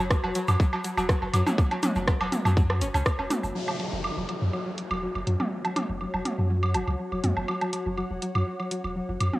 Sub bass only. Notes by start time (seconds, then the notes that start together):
0.00 F#1
0.24 E1
0.48 F#2
0.97 E1
1.22 F#1
1.33 F#2
1.96 F#1
2.20 E1
2.45 F#2
2.81 F#1
2.94 C#2
3.19 E1
3.44 F#1
3.93 F#1
4.17 E1
4.42 F#2
4.91 E1
5.15 F#1
5.27 F#2
5.89 F#1
6.14 E1
6.38 F#2
6.75 F#1
6.88 C#2
7.12 E1
7.24 F#2
7.37 F#1
7.86 F#1
8.11 E1
8.35 F#2
8.84 E1
9.09 F#1
9.21 F#2